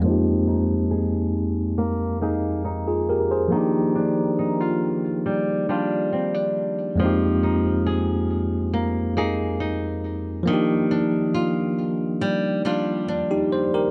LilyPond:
<<
  \new Staff \with { instrumentName = "Tine electric piano" } { \time 4/4 \key f \dorian \tempo 4 = 69 << { r2. r16 <f' aes'>16 <g' bes'>16 <aes' c''>16~ | <aes' c''>16 r2. r8. | r1 | r2. r16 <ees' g'>16 c''16 <g' bes'>16 | } \\ { <f, aes bes c' ees' g'>1 | <f bes d' ees' g'>1 | <f, aes bes c' ees' g'>1 | <f bes d' ees' g'>2.~ <f bes d' ees' g'>8 r8 | } >> }
  \new Staff \with { instrumentName = "Nylon-string guitar" } { \time 4/4 \key f \dorian f8 ees'8 aes'4 bes8 <bes ees' aes'>8 ees'4 | ees8 d'8 ees'16 f'8. g8 <g d' f'>8 c'16 d'8. | f8 ees'8 aes'4 bes8 <bes ees' aes'>8 ees'4 | ees8 d'8 f'4 g8 <g d' f'>8 d'4 | }
>>